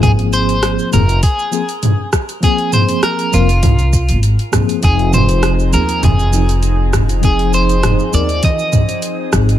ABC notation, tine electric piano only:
X:1
M:4/4
L:1/8
Q:"Swing 16ths" 1/4=100
K:Fm
V:1 name="Tine electric piano"
[F,B,CA]3 [F,B,CA] z [F,B,CA] z2 | [F,B,CA]3 [F,B,CB] z3 [F,B,CA] | [F,CEA]3 [F,CEA] z [F,CEA] z2 | [F,CEA]3 [F,CEB] z3 [F,CEA] |]